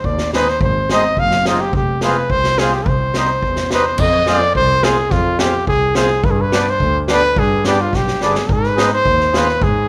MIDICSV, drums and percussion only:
0, 0, Header, 1, 2, 480
1, 0, Start_track
1, 0, Tempo, 562852
1, 521, Time_signature, 2, 2, 24, 8
1, 8428, End_track
2, 0, Start_track
2, 0, Title_t, "Drums"
2, 35, Note_on_c, 9, 36, 65
2, 120, Note_off_c, 9, 36, 0
2, 155, Note_on_c, 9, 38, 62
2, 241, Note_off_c, 9, 38, 0
2, 284, Note_on_c, 9, 38, 75
2, 369, Note_off_c, 9, 38, 0
2, 406, Note_on_c, 9, 38, 22
2, 492, Note_off_c, 9, 38, 0
2, 517, Note_on_c, 9, 36, 97
2, 602, Note_off_c, 9, 36, 0
2, 761, Note_on_c, 9, 38, 81
2, 846, Note_off_c, 9, 38, 0
2, 997, Note_on_c, 9, 36, 69
2, 1082, Note_off_c, 9, 36, 0
2, 1118, Note_on_c, 9, 38, 60
2, 1203, Note_off_c, 9, 38, 0
2, 1238, Note_on_c, 9, 38, 81
2, 1323, Note_off_c, 9, 38, 0
2, 1476, Note_on_c, 9, 36, 80
2, 1561, Note_off_c, 9, 36, 0
2, 1714, Note_on_c, 9, 38, 75
2, 1799, Note_off_c, 9, 38, 0
2, 1958, Note_on_c, 9, 36, 72
2, 2044, Note_off_c, 9, 36, 0
2, 2078, Note_on_c, 9, 38, 57
2, 2163, Note_off_c, 9, 38, 0
2, 2198, Note_on_c, 9, 38, 85
2, 2283, Note_off_c, 9, 38, 0
2, 2318, Note_on_c, 9, 38, 20
2, 2403, Note_off_c, 9, 38, 0
2, 2438, Note_on_c, 9, 36, 90
2, 2524, Note_off_c, 9, 36, 0
2, 2676, Note_on_c, 9, 38, 76
2, 2761, Note_off_c, 9, 38, 0
2, 2920, Note_on_c, 9, 36, 65
2, 3006, Note_off_c, 9, 36, 0
2, 3036, Note_on_c, 9, 38, 62
2, 3121, Note_off_c, 9, 38, 0
2, 3158, Note_on_c, 9, 38, 74
2, 3244, Note_off_c, 9, 38, 0
2, 3392, Note_on_c, 9, 49, 81
2, 3400, Note_on_c, 9, 36, 83
2, 3478, Note_off_c, 9, 49, 0
2, 3485, Note_off_c, 9, 36, 0
2, 3635, Note_on_c, 9, 38, 73
2, 3721, Note_off_c, 9, 38, 0
2, 3880, Note_on_c, 9, 36, 69
2, 3966, Note_off_c, 9, 36, 0
2, 4118, Note_on_c, 9, 38, 84
2, 4203, Note_off_c, 9, 38, 0
2, 4354, Note_on_c, 9, 38, 26
2, 4361, Note_on_c, 9, 36, 88
2, 4440, Note_off_c, 9, 38, 0
2, 4446, Note_off_c, 9, 36, 0
2, 4594, Note_on_c, 9, 38, 90
2, 4679, Note_off_c, 9, 38, 0
2, 4838, Note_on_c, 9, 36, 72
2, 4923, Note_off_c, 9, 36, 0
2, 5073, Note_on_c, 9, 38, 91
2, 5158, Note_off_c, 9, 38, 0
2, 5318, Note_on_c, 9, 36, 95
2, 5403, Note_off_c, 9, 36, 0
2, 5561, Note_on_c, 9, 38, 94
2, 5647, Note_off_c, 9, 38, 0
2, 5800, Note_on_c, 9, 36, 63
2, 5885, Note_off_c, 9, 36, 0
2, 6037, Note_on_c, 9, 38, 88
2, 6122, Note_off_c, 9, 38, 0
2, 6280, Note_on_c, 9, 36, 87
2, 6365, Note_off_c, 9, 36, 0
2, 6518, Note_on_c, 9, 38, 82
2, 6604, Note_off_c, 9, 38, 0
2, 6763, Note_on_c, 9, 36, 68
2, 6766, Note_on_c, 9, 38, 46
2, 6848, Note_off_c, 9, 36, 0
2, 6852, Note_off_c, 9, 38, 0
2, 6887, Note_on_c, 9, 38, 51
2, 6973, Note_off_c, 9, 38, 0
2, 7000, Note_on_c, 9, 38, 65
2, 7086, Note_off_c, 9, 38, 0
2, 7121, Note_on_c, 9, 38, 62
2, 7206, Note_off_c, 9, 38, 0
2, 7242, Note_on_c, 9, 36, 91
2, 7327, Note_off_c, 9, 36, 0
2, 7364, Note_on_c, 9, 38, 22
2, 7449, Note_off_c, 9, 38, 0
2, 7486, Note_on_c, 9, 38, 89
2, 7572, Note_off_c, 9, 38, 0
2, 7721, Note_on_c, 9, 36, 67
2, 7806, Note_off_c, 9, 36, 0
2, 7844, Note_on_c, 9, 38, 26
2, 7929, Note_off_c, 9, 38, 0
2, 7965, Note_on_c, 9, 38, 86
2, 8050, Note_off_c, 9, 38, 0
2, 8083, Note_on_c, 9, 38, 25
2, 8168, Note_off_c, 9, 38, 0
2, 8200, Note_on_c, 9, 36, 92
2, 8285, Note_off_c, 9, 36, 0
2, 8428, End_track
0, 0, End_of_file